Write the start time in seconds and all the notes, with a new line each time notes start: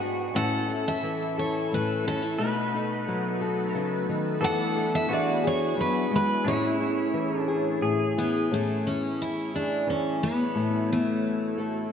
Already playing: G#2 G#3 B3 F#4 B4
0.01 D4
0.34 A2 C#4 E4 A4 F#5
0.69 E4
0.88 E5
1.03 E3
1.38 A4 C#5
1.72 A2 B4
2.04 C#4 A4
2.22 E4
2.39 B2 A3 B3 D#4 F#4 B4
2.74 D#4
3.08 F#3
3.41 A4
3.75 C#3 A4
4.09 D#3
4.41 E3 B3 D4 E4 A4 F#5
4.76 A4
4.95 E5
5.09 E3 D4 F#4 G#4 D5
5.44 G#4 C#5
5.77 F#3 B4
6.11 G#3
6.16 B4
6.44 A2 A3 C#4 E4 G#4 C#5
6.80 E4
7.14 E3
7.39 D4
7.48 G#4
7.81 A2 G#4
8.18 B3 E4
8.50 A2 A3 C#4 E4 G#4 C#5
8.87 C#4
9.22 E4
9.54 D4 E4 G#4
9.87 E3 C#4
10.23 B3
10.55 A2 A3 E4 F#4 A4
10.93 A3
11.57 A3 E4 A4